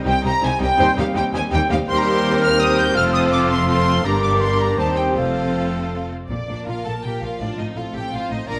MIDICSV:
0, 0, Header, 1, 11, 480
1, 0, Start_track
1, 0, Tempo, 363196
1, 1048, Time_signature, 3, 2, 24, 8
1, 5843, Tempo, 374766
1, 8723, Tempo, 364299
1, 11260, End_track
2, 0, Start_track
2, 0, Title_t, "Flute"
2, 0, Program_c, 0, 73
2, 78, Note_on_c, 0, 79, 99
2, 318, Note_off_c, 0, 79, 0
2, 336, Note_on_c, 0, 82, 91
2, 560, Note_off_c, 0, 82, 0
2, 568, Note_on_c, 0, 80, 89
2, 800, Note_off_c, 0, 80, 0
2, 808, Note_on_c, 0, 79, 105
2, 1278, Note_off_c, 0, 79, 0
2, 1292, Note_on_c, 0, 77, 99
2, 1528, Note_on_c, 0, 79, 97
2, 1548, Note_off_c, 0, 77, 0
2, 1748, Note_off_c, 0, 79, 0
2, 1756, Note_on_c, 0, 80, 95
2, 1835, Note_off_c, 0, 80, 0
2, 1996, Note_on_c, 0, 79, 104
2, 2236, Note_off_c, 0, 79, 0
2, 2248, Note_on_c, 0, 77, 96
2, 2328, Note_off_c, 0, 77, 0
2, 2489, Note_on_c, 0, 84, 114
2, 2880, Note_off_c, 0, 84, 0
2, 3200, Note_on_c, 0, 89, 103
2, 3431, Note_on_c, 0, 87, 96
2, 3451, Note_off_c, 0, 89, 0
2, 3672, Note_off_c, 0, 87, 0
2, 3679, Note_on_c, 0, 91, 105
2, 3758, Note_off_c, 0, 91, 0
2, 3902, Note_on_c, 0, 89, 115
2, 4129, Note_off_c, 0, 89, 0
2, 4137, Note_on_c, 0, 87, 97
2, 4216, Note_off_c, 0, 87, 0
2, 4384, Note_on_c, 0, 86, 95
2, 4624, Note_off_c, 0, 86, 0
2, 4633, Note_on_c, 0, 84, 92
2, 4870, Note_off_c, 0, 84, 0
2, 4884, Note_on_c, 0, 84, 93
2, 5333, Note_off_c, 0, 84, 0
2, 5341, Note_on_c, 0, 82, 94
2, 5571, Note_off_c, 0, 82, 0
2, 5579, Note_on_c, 0, 86, 88
2, 5820, Note_on_c, 0, 84, 90
2, 5840, Note_off_c, 0, 86, 0
2, 6068, Note_off_c, 0, 84, 0
2, 6083, Note_on_c, 0, 82, 81
2, 6160, Note_off_c, 0, 82, 0
2, 6311, Note_on_c, 0, 81, 85
2, 6555, Note_on_c, 0, 79, 78
2, 6574, Note_off_c, 0, 81, 0
2, 6799, Note_off_c, 0, 79, 0
2, 6807, Note_on_c, 0, 77, 72
2, 7985, Note_off_c, 0, 77, 0
2, 11260, End_track
3, 0, Start_track
3, 0, Title_t, "Violin section"
3, 0, Program_c, 1, 48
3, 106, Note_on_c, 1, 79, 117
3, 333, Note_off_c, 1, 79, 0
3, 340, Note_on_c, 1, 82, 119
3, 570, Note_off_c, 1, 82, 0
3, 597, Note_on_c, 1, 80, 108
3, 823, Note_off_c, 1, 80, 0
3, 825, Note_on_c, 1, 79, 112
3, 1287, Note_off_c, 1, 79, 0
3, 1310, Note_on_c, 1, 77, 105
3, 1402, Note_off_c, 1, 77, 0
3, 1549, Note_on_c, 1, 79, 110
3, 1641, Note_off_c, 1, 79, 0
3, 1795, Note_on_c, 1, 80, 123
3, 1886, Note_off_c, 1, 80, 0
3, 2035, Note_on_c, 1, 79, 127
3, 2125, Note_off_c, 1, 79, 0
3, 2272, Note_on_c, 1, 77, 109
3, 2363, Note_off_c, 1, 77, 0
3, 2503, Note_on_c, 1, 84, 120
3, 2583, Note_off_c, 1, 84, 0
3, 2604, Note_on_c, 1, 82, 103
3, 2680, Note_off_c, 1, 82, 0
3, 2708, Note_on_c, 1, 84, 122
3, 3215, Note_on_c, 1, 89, 123
3, 3219, Note_off_c, 1, 84, 0
3, 3441, Note_off_c, 1, 89, 0
3, 3459, Note_on_c, 1, 87, 108
3, 3680, Note_on_c, 1, 91, 118
3, 3686, Note_off_c, 1, 87, 0
3, 3916, Note_off_c, 1, 91, 0
3, 3922, Note_on_c, 1, 89, 109
3, 4016, Note_off_c, 1, 89, 0
3, 4162, Note_on_c, 1, 87, 106
3, 4255, Note_off_c, 1, 87, 0
3, 4397, Note_on_c, 1, 86, 103
3, 4493, Note_off_c, 1, 86, 0
3, 4636, Note_on_c, 1, 84, 116
3, 4863, Note_off_c, 1, 84, 0
3, 4879, Note_on_c, 1, 84, 116
3, 5350, Note_off_c, 1, 84, 0
3, 5355, Note_on_c, 1, 82, 104
3, 5592, Note_on_c, 1, 86, 92
3, 5598, Note_off_c, 1, 82, 0
3, 5691, Note_off_c, 1, 86, 0
3, 5845, Note_on_c, 1, 84, 94
3, 6072, Note_on_c, 1, 82, 92
3, 6075, Note_off_c, 1, 84, 0
3, 6313, Note_off_c, 1, 82, 0
3, 6318, Note_on_c, 1, 81, 93
3, 6414, Note_off_c, 1, 81, 0
3, 6535, Note_on_c, 1, 79, 81
3, 6637, Note_off_c, 1, 79, 0
3, 6784, Note_on_c, 1, 77, 83
3, 7974, Note_off_c, 1, 77, 0
3, 8472, Note_on_c, 1, 74, 65
3, 8698, Note_off_c, 1, 74, 0
3, 8711, Note_on_c, 1, 77, 77
3, 8954, Note_off_c, 1, 77, 0
3, 8966, Note_on_c, 1, 81, 77
3, 9199, Note_on_c, 1, 79, 74
3, 9206, Note_off_c, 1, 81, 0
3, 9443, Note_off_c, 1, 79, 0
3, 9444, Note_on_c, 1, 77, 70
3, 9680, Note_off_c, 1, 77, 0
3, 9684, Note_on_c, 1, 74, 78
3, 9925, Note_off_c, 1, 74, 0
3, 9927, Note_on_c, 1, 75, 66
3, 10022, Note_off_c, 1, 75, 0
3, 10156, Note_on_c, 1, 77, 76
3, 10253, Note_off_c, 1, 77, 0
3, 10407, Note_on_c, 1, 79, 83
3, 10639, Note_off_c, 1, 79, 0
3, 10654, Note_on_c, 1, 77, 85
3, 10887, Note_off_c, 1, 77, 0
3, 10891, Note_on_c, 1, 75, 71
3, 11121, Note_off_c, 1, 75, 0
3, 11123, Note_on_c, 1, 82, 87
3, 11260, Note_off_c, 1, 82, 0
3, 11260, End_track
4, 0, Start_track
4, 0, Title_t, "Oboe"
4, 0, Program_c, 2, 68
4, 1060, Note_on_c, 2, 79, 90
4, 1223, Note_off_c, 2, 79, 0
4, 2482, Note_on_c, 2, 79, 90
4, 3905, Note_on_c, 2, 77, 83
4, 3925, Note_off_c, 2, 79, 0
4, 5347, Note_on_c, 2, 74, 75
4, 5367, Note_off_c, 2, 77, 0
4, 6304, Note_on_c, 2, 72, 62
4, 6323, Note_off_c, 2, 74, 0
4, 8000, Note_off_c, 2, 72, 0
4, 11260, End_track
5, 0, Start_track
5, 0, Title_t, "Clarinet"
5, 0, Program_c, 3, 71
5, 1056, Note_on_c, 3, 72, 92
5, 1220, Note_off_c, 3, 72, 0
5, 2494, Note_on_c, 3, 70, 84
5, 3919, Note_on_c, 3, 69, 80
5, 3939, Note_off_c, 3, 70, 0
5, 5337, Note_off_c, 3, 69, 0
5, 5345, Note_on_c, 3, 67, 69
5, 6808, Note_on_c, 3, 69, 58
5, 6827, Note_off_c, 3, 67, 0
5, 8010, Note_off_c, 3, 69, 0
5, 11260, End_track
6, 0, Start_track
6, 0, Title_t, "Violin section"
6, 0, Program_c, 4, 48
6, 87, Note_on_c, 4, 67, 73
6, 99, Note_on_c, 4, 72, 78
6, 184, Note_off_c, 4, 67, 0
6, 193, Note_off_c, 4, 72, 0
6, 343, Note_on_c, 4, 72, 75
6, 346, Note_on_c, 4, 67, 76
6, 436, Note_off_c, 4, 72, 0
6, 439, Note_off_c, 4, 67, 0
6, 575, Note_on_c, 4, 67, 79
6, 577, Note_on_c, 4, 72, 79
6, 670, Note_off_c, 4, 67, 0
6, 672, Note_off_c, 4, 72, 0
6, 833, Note_on_c, 4, 67, 77
6, 836, Note_on_c, 4, 72, 76
6, 924, Note_off_c, 4, 67, 0
6, 926, Note_off_c, 4, 72, 0
6, 1051, Note_on_c, 4, 67, 92
6, 1064, Note_on_c, 4, 72, 87
6, 1146, Note_off_c, 4, 67, 0
6, 1157, Note_off_c, 4, 72, 0
6, 1293, Note_on_c, 4, 72, 78
6, 1300, Note_on_c, 4, 67, 76
6, 1388, Note_off_c, 4, 72, 0
6, 1393, Note_off_c, 4, 67, 0
6, 1532, Note_on_c, 4, 67, 74
6, 1541, Note_on_c, 4, 72, 81
6, 1628, Note_off_c, 4, 67, 0
6, 1634, Note_off_c, 4, 72, 0
6, 1775, Note_on_c, 4, 67, 80
6, 1777, Note_on_c, 4, 72, 75
6, 1870, Note_off_c, 4, 67, 0
6, 1872, Note_off_c, 4, 72, 0
6, 2001, Note_on_c, 4, 67, 82
6, 2003, Note_on_c, 4, 72, 79
6, 2098, Note_off_c, 4, 67, 0
6, 2100, Note_off_c, 4, 72, 0
6, 2254, Note_on_c, 4, 67, 81
6, 2258, Note_on_c, 4, 72, 79
6, 2348, Note_off_c, 4, 67, 0
6, 2351, Note_off_c, 4, 72, 0
6, 2490, Note_on_c, 4, 72, 92
6, 2498, Note_on_c, 4, 70, 90
6, 3386, Note_off_c, 4, 72, 0
6, 3390, Note_off_c, 4, 70, 0
6, 3444, Note_on_c, 4, 72, 89
6, 3447, Note_on_c, 4, 70, 85
6, 3891, Note_off_c, 4, 72, 0
6, 3904, Note_on_c, 4, 69, 85
6, 3907, Note_on_c, 4, 72, 84
6, 3908, Note_off_c, 4, 70, 0
6, 4852, Note_off_c, 4, 72, 0
6, 4860, Note_off_c, 4, 69, 0
6, 4876, Note_on_c, 4, 69, 77
6, 4881, Note_on_c, 4, 72, 76
6, 5348, Note_off_c, 4, 69, 0
6, 5351, Note_off_c, 4, 72, 0
6, 5365, Note_on_c, 4, 67, 80
6, 5365, Note_on_c, 4, 70, 81
6, 6268, Note_off_c, 4, 70, 0
6, 6269, Note_off_c, 4, 67, 0
6, 6320, Note_on_c, 4, 67, 65
6, 6320, Note_on_c, 4, 72, 70
6, 6778, Note_off_c, 4, 72, 0
6, 6792, Note_off_c, 4, 67, 0
6, 6793, Note_on_c, 4, 72, 66
6, 6795, Note_on_c, 4, 69, 69
6, 7978, Note_off_c, 4, 72, 0
6, 8003, Note_off_c, 4, 69, 0
6, 8490, Note_on_c, 4, 62, 60
6, 8708, Note_off_c, 4, 62, 0
6, 8715, Note_on_c, 4, 65, 64
6, 8954, Note_on_c, 4, 69, 65
6, 8961, Note_off_c, 4, 65, 0
6, 9053, Note_off_c, 4, 69, 0
6, 9219, Note_on_c, 4, 67, 61
6, 9448, Note_off_c, 4, 67, 0
6, 9472, Note_on_c, 4, 65, 61
6, 9699, Note_off_c, 4, 65, 0
6, 9704, Note_on_c, 4, 62, 69
6, 9931, Note_off_c, 4, 62, 0
6, 9933, Note_on_c, 4, 63, 63
6, 10164, Note_on_c, 4, 65, 70
6, 10169, Note_off_c, 4, 63, 0
6, 10401, Note_on_c, 4, 67, 67
6, 10404, Note_off_c, 4, 65, 0
6, 10628, Note_on_c, 4, 65, 71
6, 10641, Note_off_c, 4, 67, 0
6, 10865, Note_on_c, 4, 63, 67
6, 10869, Note_off_c, 4, 65, 0
6, 11088, Note_on_c, 4, 70, 81
6, 11113, Note_off_c, 4, 63, 0
6, 11260, Note_off_c, 4, 70, 0
6, 11260, End_track
7, 0, Start_track
7, 0, Title_t, "Viola section"
7, 0, Program_c, 5, 48
7, 61, Note_on_c, 5, 55, 73
7, 67, Note_on_c, 5, 63, 77
7, 162, Note_off_c, 5, 55, 0
7, 167, Note_off_c, 5, 63, 0
7, 311, Note_on_c, 5, 63, 71
7, 316, Note_on_c, 5, 55, 69
7, 411, Note_off_c, 5, 63, 0
7, 414, Note_off_c, 5, 55, 0
7, 556, Note_on_c, 5, 55, 78
7, 558, Note_on_c, 5, 63, 78
7, 655, Note_off_c, 5, 55, 0
7, 656, Note_off_c, 5, 63, 0
7, 790, Note_on_c, 5, 55, 76
7, 798, Note_on_c, 5, 63, 80
7, 889, Note_off_c, 5, 55, 0
7, 896, Note_off_c, 5, 63, 0
7, 1035, Note_on_c, 5, 55, 87
7, 1039, Note_on_c, 5, 63, 83
7, 1134, Note_off_c, 5, 55, 0
7, 1137, Note_off_c, 5, 63, 0
7, 1279, Note_on_c, 5, 55, 75
7, 1280, Note_on_c, 5, 63, 77
7, 1377, Note_off_c, 5, 55, 0
7, 1378, Note_off_c, 5, 63, 0
7, 1505, Note_on_c, 5, 55, 79
7, 1509, Note_on_c, 5, 63, 84
7, 1606, Note_off_c, 5, 55, 0
7, 1609, Note_off_c, 5, 63, 0
7, 1767, Note_on_c, 5, 55, 73
7, 1767, Note_on_c, 5, 63, 75
7, 1863, Note_off_c, 5, 55, 0
7, 1863, Note_off_c, 5, 63, 0
7, 2002, Note_on_c, 5, 63, 83
7, 2003, Note_on_c, 5, 55, 85
7, 2099, Note_off_c, 5, 63, 0
7, 2100, Note_off_c, 5, 55, 0
7, 2238, Note_on_c, 5, 55, 79
7, 2247, Note_on_c, 5, 63, 75
7, 2335, Note_off_c, 5, 55, 0
7, 2342, Note_off_c, 5, 63, 0
7, 2487, Note_on_c, 5, 55, 91
7, 2488, Note_on_c, 5, 67, 94
7, 3384, Note_off_c, 5, 55, 0
7, 3385, Note_off_c, 5, 67, 0
7, 3441, Note_on_c, 5, 55, 85
7, 3441, Note_on_c, 5, 67, 84
7, 3898, Note_on_c, 5, 60, 82
7, 3898, Note_on_c, 5, 65, 85
7, 3905, Note_off_c, 5, 55, 0
7, 3905, Note_off_c, 5, 67, 0
7, 4855, Note_off_c, 5, 60, 0
7, 4856, Note_off_c, 5, 65, 0
7, 4871, Note_on_c, 5, 60, 81
7, 4872, Note_on_c, 5, 65, 79
7, 5346, Note_off_c, 5, 60, 0
7, 5346, Note_off_c, 5, 65, 0
7, 5356, Note_on_c, 5, 62, 76
7, 5358, Note_on_c, 5, 55, 77
7, 6264, Note_off_c, 5, 62, 0
7, 6265, Note_off_c, 5, 55, 0
7, 6297, Note_on_c, 5, 63, 69
7, 6302, Note_on_c, 5, 60, 65
7, 6774, Note_off_c, 5, 60, 0
7, 6786, Note_on_c, 5, 65, 60
7, 6790, Note_off_c, 5, 63, 0
7, 6790, Note_on_c, 5, 60, 65
7, 7976, Note_off_c, 5, 60, 0
7, 7999, Note_off_c, 5, 65, 0
7, 8236, Note_on_c, 5, 74, 66
7, 8682, Note_off_c, 5, 74, 0
7, 8719, Note_on_c, 5, 70, 61
7, 9666, Note_off_c, 5, 70, 0
7, 9698, Note_on_c, 5, 65, 56
7, 10161, Note_on_c, 5, 69, 59
7, 10162, Note_off_c, 5, 65, 0
7, 10630, Note_off_c, 5, 69, 0
7, 10645, Note_on_c, 5, 72, 62
7, 11120, Note_on_c, 5, 74, 70
7, 11122, Note_off_c, 5, 72, 0
7, 11260, Note_off_c, 5, 74, 0
7, 11260, End_track
8, 0, Start_track
8, 0, Title_t, "Bassoon"
8, 0, Program_c, 6, 70
8, 1046, Note_on_c, 6, 60, 89
8, 1214, Note_off_c, 6, 60, 0
8, 2493, Note_on_c, 6, 60, 96
8, 5308, Note_off_c, 6, 60, 0
8, 5365, Note_on_c, 6, 58, 73
8, 6313, Note_on_c, 6, 60, 68
8, 6332, Note_off_c, 6, 58, 0
8, 8004, Note_off_c, 6, 60, 0
8, 11260, End_track
9, 0, Start_track
9, 0, Title_t, "French horn section"
9, 0, Program_c, 7, 60
9, 0, Note_on_c, 7, 55, 84
9, 0, Note_on_c, 7, 60, 78
9, 2444, Note_off_c, 7, 55, 0
9, 2445, Note_off_c, 7, 60, 0
9, 2489, Note_on_c, 7, 58, 83
9, 2493, Note_on_c, 7, 60, 81
9, 3886, Note_off_c, 7, 58, 0
9, 3924, Note_on_c, 7, 57, 76
9, 5308, Note_off_c, 7, 60, 0
9, 5354, Note_on_c, 7, 55, 69
9, 5359, Note_on_c, 7, 62, 66
9, 5363, Note_off_c, 7, 57, 0
9, 6285, Note_on_c, 7, 60, 64
9, 6298, Note_off_c, 7, 62, 0
9, 6775, Note_on_c, 7, 57, 56
9, 6798, Note_off_c, 7, 55, 0
9, 7990, Note_off_c, 7, 60, 0
9, 7993, Note_off_c, 7, 57, 0
9, 8240, Note_on_c, 7, 58, 57
9, 8246, Note_on_c, 7, 53, 59
9, 9631, Note_off_c, 7, 58, 0
9, 9722, Note_on_c, 7, 60, 57
9, 11069, Note_off_c, 7, 53, 0
9, 11086, Note_off_c, 7, 60, 0
9, 11104, Note_on_c, 7, 62, 53
9, 11109, Note_on_c, 7, 53, 52
9, 11260, Note_off_c, 7, 53, 0
9, 11260, Note_off_c, 7, 62, 0
9, 11260, End_track
10, 0, Start_track
10, 0, Title_t, "Cello section"
10, 0, Program_c, 8, 48
10, 82, Note_on_c, 8, 36, 84
10, 179, Note_off_c, 8, 36, 0
10, 320, Note_on_c, 8, 36, 89
10, 418, Note_off_c, 8, 36, 0
10, 565, Note_on_c, 8, 36, 91
10, 662, Note_off_c, 8, 36, 0
10, 806, Note_on_c, 8, 36, 81
10, 903, Note_off_c, 8, 36, 0
10, 1054, Note_on_c, 8, 39, 104
10, 1149, Note_off_c, 8, 39, 0
10, 1297, Note_on_c, 8, 39, 88
10, 1391, Note_off_c, 8, 39, 0
10, 1533, Note_on_c, 8, 39, 84
10, 1628, Note_off_c, 8, 39, 0
10, 1771, Note_on_c, 8, 39, 92
10, 1866, Note_off_c, 8, 39, 0
10, 2022, Note_on_c, 8, 39, 93
10, 2115, Note_off_c, 8, 39, 0
10, 2257, Note_on_c, 8, 39, 86
10, 2350, Note_off_c, 8, 39, 0
10, 2499, Note_on_c, 8, 39, 97
10, 3866, Note_off_c, 8, 39, 0
10, 3921, Note_on_c, 8, 41, 94
10, 5332, Note_off_c, 8, 41, 0
10, 5342, Note_on_c, 8, 43, 88
10, 6257, Note_off_c, 8, 43, 0
10, 6312, Note_on_c, 8, 39, 73
10, 6797, Note_off_c, 8, 39, 0
10, 6804, Note_on_c, 8, 41, 66
10, 8008, Note_off_c, 8, 41, 0
10, 8248, Note_on_c, 8, 46, 64
10, 8342, Note_off_c, 8, 46, 0
10, 8488, Note_on_c, 8, 46, 53
10, 8582, Note_off_c, 8, 46, 0
10, 8726, Note_on_c, 8, 46, 52
10, 8822, Note_off_c, 8, 46, 0
10, 8971, Note_on_c, 8, 46, 52
10, 9066, Note_off_c, 8, 46, 0
10, 9211, Note_on_c, 8, 46, 54
10, 9306, Note_off_c, 8, 46, 0
10, 9446, Note_on_c, 8, 46, 52
10, 9542, Note_off_c, 8, 46, 0
10, 9682, Note_on_c, 8, 45, 60
10, 9779, Note_off_c, 8, 45, 0
10, 9918, Note_on_c, 8, 45, 55
10, 10016, Note_off_c, 8, 45, 0
10, 10166, Note_on_c, 8, 45, 54
10, 10261, Note_off_c, 8, 45, 0
10, 10387, Note_on_c, 8, 45, 58
10, 10485, Note_off_c, 8, 45, 0
10, 10637, Note_on_c, 8, 45, 56
10, 10734, Note_off_c, 8, 45, 0
10, 10874, Note_on_c, 8, 45, 59
10, 10971, Note_off_c, 8, 45, 0
10, 11112, Note_on_c, 8, 46, 64
10, 11260, Note_off_c, 8, 46, 0
10, 11260, End_track
11, 0, Start_track
11, 0, Title_t, "Double bass section"
11, 0, Program_c, 10, 48
11, 81, Note_on_c, 10, 36, 80
11, 179, Note_off_c, 10, 36, 0
11, 319, Note_on_c, 10, 36, 85
11, 417, Note_off_c, 10, 36, 0
11, 560, Note_on_c, 10, 36, 85
11, 657, Note_off_c, 10, 36, 0
11, 804, Note_on_c, 10, 36, 90
11, 901, Note_off_c, 10, 36, 0
11, 1035, Note_on_c, 10, 39, 97
11, 1134, Note_off_c, 10, 39, 0
11, 1280, Note_on_c, 10, 39, 90
11, 1378, Note_off_c, 10, 39, 0
11, 1521, Note_on_c, 10, 39, 87
11, 1618, Note_off_c, 10, 39, 0
11, 1767, Note_on_c, 10, 39, 93
11, 1863, Note_off_c, 10, 39, 0
11, 2011, Note_on_c, 10, 39, 85
11, 2106, Note_off_c, 10, 39, 0
11, 2260, Note_on_c, 10, 39, 84
11, 2353, Note_off_c, 10, 39, 0
11, 2481, Note_on_c, 10, 39, 89
11, 3858, Note_off_c, 10, 39, 0
11, 3908, Note_on_c, 10, 29, 87
11, 5326, Note_off_c, 10, 29, 0
11, 5353, Note_on_c, 10, 31, 76
11, 6263, Note_off_c, 10, 31, 0
11, 6316, Note_on_c, 10, 39, 70
11, 6800, Note_off_c, 10, 39, 0
11, 6813, Note_on_c, 10, 29, 66
11, 8012, Note_off_c, 10, 29, 0
11, 8241, Note_on_c, 10, 34, 63
11, 8337, Note_off_c, 10, 34, 0
11, 8476, Note_on_c, 10, 34, 53
11, 8572, Note_off_c, 10, 34, 0
11, 8726, Note_on_c, 10, 34, 53
11, 8822, Note_off_c, 10, 34, 0
11, 8963, Note_on_c, 10, 34, 57
11, 9060, Note_off_c, 10, 34, 0
11, 9218, Note_on_c, 10, 34, 54
11, 9311, Note_off_c, 10, 34, 0
11, 9443, Note_on_c, 10, 34, 51
11, 9540, Note_off_c, 10, 34, 0
11, 9686, Note_on_c, 10, 33, 60
11, 9782, Note_off_c, 10, 33, 0
11, 9933, Note_on_c, 10, 33, 55
11, 10027, Note_off_c, 10, 33, 0
11, 10165, Note_on_c, 10, 33, 58
11, 10261, Note_off_c, 10, 33, 0
11, 10407, Note_on_c, 10, 33, 60
11, 10501, Note_off_c, 10, 33, 0
11, 10652, Note_on_c, 10, 33, 56
11, 10746, Note_off_c, 10, 33, 0
11, 10876, Note_on_c, 10, 33, 58
11, 10973, Note_off_c, 10, 33, 0
11, 11117, Note_on_c, 10, 34, 64
11, 11260, Note_off_c, 10, 34, 0
11, 11260, End_track
0, 0, End_of_file